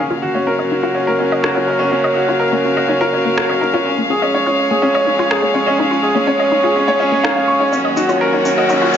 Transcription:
0.00 double bass section F#2, string quartet C#3 F#3 A#3 F5, grand piano C#4
0.10 synth arpeggio sound F4
0.22 grand piano F#4
0.35 synth arpeggio sound A#3, grand piano C#4
0.47 synth arpeggio sound C#4, grand piano A#4
0.59 grand piano C#4, synth arpeggio sound D#5
0.72 synth arpeggio sound D#4
0.83 synth arpeggio sound F4, grand piano F#4
0.95 grand piano C#4
1.07 synth arpeggio sound A#3, grand piano A#4
1.19 grand piano C#4, synth arpeggio sound C#4
1.32 synth arpeggio sound D#5
1.43 synth arpeggio sound D#4, grand piano F#4, cross-stick
1.55 grand piano C#4, synth arpeggio sound F4
1.68 grand piano A#4
1.79 synth arpeggio sound A#3, grand piano C#4
1.92 grand piano C#4, synth arpeggio sound C#4
2.04 synth arpeggio sound D#5
2.16 synth arpeggio sound D#4, grand piano F#4
2.28 grand piano C#4, synth arpeggio sound F4
2.39 grand piano A#4
2.52 synth arpeggio sound A#3, grand piano C#4
2.65 synth arpeggio sound C#4
2.76 grand piano F#4, synth arpeggio sound D#5
2.88 grand piano C#4, synth arpeggio sound D#4
3.01 synth arpeggio sound F4, grand piano A#4
3.13 grand piano C#4
3.26 synth arpeggio sound A#3
3.37 synth arpeggio sound C#4, grand piano F#4, cross-stick
3.49 grand piano C#4, synth arpeggio sound D#5
3.61 synth arpeggio sound D#4, grand piano A#4
3.74 grand piano C#4, synth arpeggio sound F4
3.85 double bass section F2, string quartet G#3 C#4, grand piano C#4
3.98 synth arpeggio sound A#3
4.10 synth arpeggio sound C#4, grand piano G#4
4.22 grand piano C#4, synth arpeggio sound D#5
4.34 synth arpeggio sound D#4, grand piano C#5
4.46 grand piano C#4, synth arpeggio sound F4
4.70 synth arpeggio sound A#3, grand piano G#4
4.82 grand piano C#4, synth arpeggio sound C#4
4.94 grand piano C#5, synth arpeggio sound D#5
5.06 grand piano C#4, synth arpeggio sound D#4
5.19 synth arpeggio sound F4
5.30 grand piano G#4, cross-stick
5.42 synth arpeggio sound A#3, grand piano C#4
5.54 synth arpeggio sound C#4, grand piano C#5
5.66 grand piano C#4, synth arpeggio sound D#5
5.78 grand piano C#4, synth arpeggio sound D#4
5.91 synth arpeggio sound F4
6.03 grand piano G#4
6.15 synth arpeggio sound A#3, grand piano C#4
6.27 synth arpeggio sound C#4, grand piano C#5
6.39 grand piano C#4, synth arpeggio sound D#5
6.52 synth arpeggio sound D#4
6.64 synth arpeggio sound F4, grand piano G#4
6.76 grand piano C#4
6.88 synth arpeggio sound A#3, grand piano C#5
7.00 grand piano C#4, synth arpeggio sound D#5
7.12 synth arpeggio sound A#3
7.24 synth arpeggio sound D#4, grand piano F5, cross-stick
7.36 synth arpeggio sound C#4, grand piano F5
7.48 grand piano C#6
7.60 synth arpeggio sound D#4, grand piano C#5
7.72 double bass section D#2, string quartet D#3 F#3 A#3 F#4, grand piano C#4, synth arpeggio sound C#4, riser, shaker
7.85 synth arpeggio sound D#5
7.97 synth arpeggio sound D#4, grand piano F#4, shaker
8.08 grand piano C#4, synth arpeggio sound F4, shaker
8.21 grand piano A#4
8.33 grand piano C#4, synth arpeggio sound D#4
8.45 synth arpeggio sound C#4, shaker
8.57 grand piano F#4, synth arpeggio sound D#5
8.69 grand piano C#4, synth arpeggio sound D#4, shaker
8.81 synth arpeggio sound F4, grand piano F#4
8.94 grand piano C#4, shaker

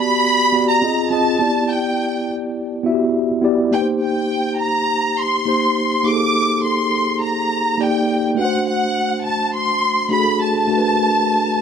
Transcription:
Already playing: tine electric piano B3 F#4 G4 D5, violin section B5
0.52 tine electric piano B3 F#4 G4 D5
0.69 violin section A#5
0.82 tine electric piano C4 F4 G#4 D#5
1.10 tine electric piano C4 F4 G#4 D#5, violin section A5
1.39 tine electric piano B3 E4 G4 D5
1.71 violin section G5
2.83 tine electric piano B3 E4 F#4 E5
2.92 tine electric piano G4
3.42 tine electric piano B3 E4 G4 D5
3.71 tine electric piano A#3 D#4 G4 B4, violin section G5
3.80 tine electric piano C5
4.02 violin section G5
4.61 violin section A#5
5.19 violin section C6
5.45 tine electric piano A#3 D#4 G4 C5
6.03 tine electric piano A#3 D#4 G4 G#4, violin section D6
6.13 tine electric piano A4
6.64 violin section C6
7.23 violin section A#5
7.78 tine electric piano A#3 D#4 G4 D5, violin section G5
8.35 tine electric piano A3 D4 F#4 B4
8.39 violin section F#5
8.45 tine electric piano C5
8.68 violin section F#5
9.25 violin section A5
9.56 violin section C6
10.09 tine electric piano A3 D4 F#4 G#4
10.13 violin section B5
10.19 tine electric piano A4
10.42 violin section A5
10.67 tine electric piano A3 D4 F#4 A#4
10.77 tine electric piano B4

